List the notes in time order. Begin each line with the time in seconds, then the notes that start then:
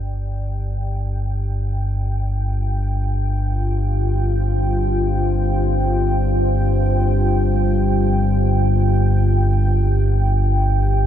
Already playing: G1 G2 G4 D5 G5
0.98 F4
2.43 C5
9.10 G4
10.61 D5